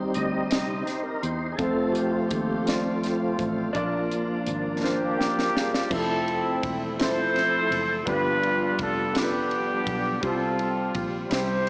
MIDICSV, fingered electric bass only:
0, 0, Header, 1, 2, 480
1, 0, Start_track
1, 0, Tempo, 719424
1, 1062, Time_signature, 6, 3, 24, 8
1, 7802, End_track
2, 0, Start_track
2, 0, Title_t, "Fingered electric bass"
2, 0, Program_c, 0, 33
2, 0, Note_on_c, 0, 39, 87
2, 73, Note_off_c, 0, 39, 0
2, 104, Note_on_c, 0, 38, 71
2, 797, Note_off_c, 0, 38, 0
2, 821, Note_on_c, 0, 40, 77
2, 1042, Note_off_c, 0, 40, 0
2, 1060, Note_on_c, 0, 41, 98
2, 1515, Note_off_c, 0, 41, 0
2, 1540, Note_on_c, 0, 39, 90
2, 2235, Note_off_c, 0, 39, 0
2, 2262, Note_on_c, 0, 33, 79
2, 2483, Note_off_c, 0, 33, 0
2, 2501, Note_on_c, 0, 34, 88
2, 2955, Note_off_c, 0, 34, 0
2, 2981, Note_on_c, 0, 32, 85
2, 3704, Note_off_c, 0, 32, 0
2, 3704, Note_on_c, 0, 28, 86
2, 3924, Note_off_c, 0, 28, 0
2, 3944, Note_on_c, 0, 29, 104
2, 4396, Note_off_c, 0, 29, 0
2, 4426, Note_on_c, 0, 28, 82
2, 5117, Note_off_c, 0, 28, 0
2, 5141, Note_on_c, 0, 30, 82
2, 5362, Note_off_c, 0, 30, 0
2, 5383, Note_on_c, 0, 31, 104
2, 5836, Note_off_c, 0, 31, 0
2, 5866, Note_on_c, 0, 29, 93
2, 6557, Note_off_c, 0, 29, 0
2, 6583, Note_on_c, 0, 35, 90
2, 6804, Note_off_c, 0, 35, 0
2, 6824, Note_on_c, 0, 36, 97
2, 7277, Note_off_c, 0, 36, 0
2, 7306, Note_on_c, 0, 34, 89
2, 7525, Note_off_c, 0, 34, 0
2, 7545, Note_on_c, 0, 36, 112
2, 7802, Note_off_c, 0, 36, 0
2, 7802, End_track
0, 0, End_of_file